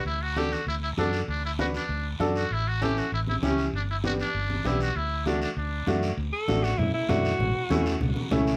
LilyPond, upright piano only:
\new Staff \with { instrumentName = "Upright piano" } { \time 4/4 \key d \major \tempo 4 = 196 r4 <d' fis' a'>8 r4. <d' fis' a'>8 r8 | r4 <d' fis' b'>8 r4. <d' fis' a'>8 r8 | r4 <cis' e' a'>8 r4. <cis' e' g'>8 r8 | r4 <b d' g'>8 r4. <b d' g'>8 r8 |
r4 <a d' fis'>8 r4. <a d' fis'>8 r8 | r4 <a d' fis'>8 r4. <a d' e'>8 r8 | r4 <a cis' e'>8 r4. <a cis' e'>8 r8 | }